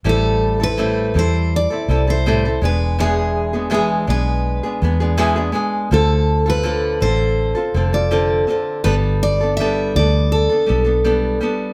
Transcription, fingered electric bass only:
X:1
M:4/4
L:1/16
Q:1/4=82
K:Am
V:1 name="Fingered electric bass" clef=bass
A,,,6 E,,3 z C,,4 E,,,2- | E,,,6 B,,,3 z E,,4 z2 | D,,6 A,,,3 z F,,,4 z2 | G,,,6 D,,3 z B,,,4 z2 |]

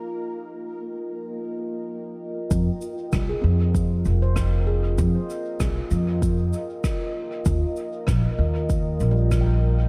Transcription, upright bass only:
X:1
M:4/4
L:1/8
Q:"Swing 16ths" 1/4=97
K:Fm
V:1 name="Upright bass" clef=bass
z8 | F,, z C,, F,,2 F,,,3 | F,, z C,, F,,2 z3 | E,, z B,,, E,,2 B,,,3 |]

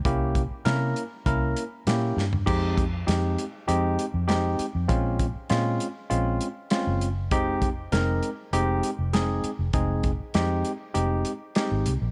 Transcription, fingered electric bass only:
X:1
M:4/4
L:1/16
Q:1/4=99
K:Fm
V:1 name="Fingered electric bass" clef=bass
C,,3 z C,2 z2 C,,2 z2 B,,2 G,,2 | F,,4 F,,2 z2 F,,2 z F,,3 z F,, | B,,,3 z B,,2 z2 B,,,2 z3 _G,,,3 | F,,,4 F,,,2 z2 F,,,2 z F,,,3 z F,,, |
F,,,3 z F,,2 z2 F,,,2 z3 A,,, C,, B,,, |]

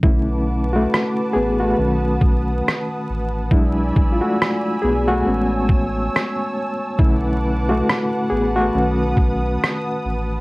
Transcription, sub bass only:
X:1
M:4/4
L:1/16
Q:"Swing 16ths" 1/4=69
K:Bdor
V:1 name="Sub bass" clef=bass
B,,,4 z2 A,,,2 B,,,2 B,,,2 z2 A,,,2 | B,,,2 A,,, z3 B,,,2 A,,,4 z4 | B,,,4 z2 A,,,2 B,,,2 B,,,2 z2 A,,,2 |]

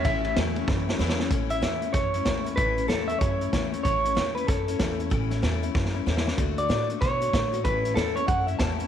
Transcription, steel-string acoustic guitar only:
X:1
M:4/4
L:1/8
Q:"Swing" 1/4=189
K:A
V:1 name="Steel-string acoustic guitar"
[A,,E,A,CE] [A,CE] [A,,E,A,CE] [A,CE] [E,A,CE] [A,CE] [A,,E,A,CE] [A,CE] | [A,,E,A,CE] [A,CE] [A,,E,A,CE] [A,CE] [E,A,CE] [A,CE] [A,,E,A,CE] [A,CE] | [A,,E,A,CE] [A,CE] [A,,E,A,CE] [A,CE] [E,A,CE] [A,CE] [A,,E,A,CE] [A,CE] | [A,,E,A,CE] [A,CE] [A,,E,A,CE] [A,CE] [E,A,CE] [A,CE] [A,,E,A,CE] [A,CE] |
[A,,E,A,CE] [A,CE] [A,,E,A,CE] [A,CE] [E,A,CE] [A,CE] [A,,E,A,CE] [A,CE] | [D,A,DF] [A,DF] [D,A,DF] [A,DF] [D,A,DF] [A,DF] [D,A,DF] [A,DF] | [A,,E,A,CE] [A,CE] [A,,E,A,CE] [A,CE] [E,A,CE] [A,CE] [A,,E,A,CE] [A,CE] |]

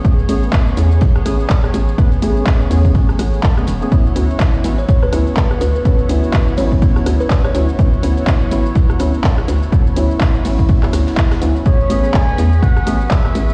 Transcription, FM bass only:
X:1
M:4/4
L:1/8
Q:"Swing 16ths" 1/4=124
K:Dlyd
V:1 name="FM bass" clef=bass
z A,,, z E,, z A,,, z A,,, | z A,,, z E,, z A,,, z E,,, | z D,, z A,,, z D,, z D,, | z D,, z A,,, z D,, z D,, |
z D,, z A,,, z D,, z D,, | z D,, z A,,, z D,, z D,, | z A,,, z E,, z A,,, z A,,, |]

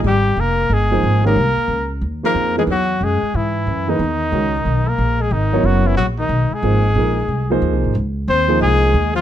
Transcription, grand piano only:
X:1
M:4/4
L:1/8
Q:"Swing" 1/4=182
K:Ab
V:1 name="Grand piano"
z4 z [F,B,EAc]2 [E,A,DGB] | z4 z [F,B,EAc]2 [_F,B,EA_c] | z6 z [=E,B,^D^G=B] | z2 [^D,^G,_D^FB] z4 z |
z [^F,=B,=E_Bd]3 z4 | [F,B,EAc] z [F,B,EAB] z2 [F,B,EAc]3 | [K:Db] z3 [F,B,EAc]3 z2 |]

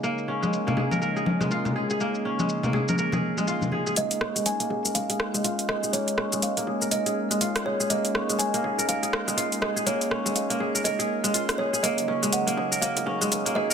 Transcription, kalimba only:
X:1
M:4/4
L:1/8
Q:"Swing 16ths" 1/4=122
K:Bbm
V:1 name="Kalimba"
z8 | z8 | e2 a2 f3 e | d2 f2 e3 d |
e2 a2 f3 e | d2 f2 e3 d | e2 g2 f3 e |]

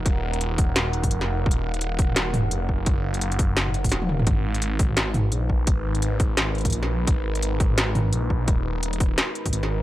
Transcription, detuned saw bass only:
X:1
M:4/4
L:1/8
Q:"Swing 16ths" 1/4=171
K:G#dor
V:1 name="Detuned saw bass" clef=bass
D,,,6 E,,,2 | D,,,6 E,,,2 | F,,,6 D,,,2 | G,,,6 A,,,2 |
G,,,6 A,,,2 | G,,,6 A,,,2 | D,,,4 z2 G,,,2 |]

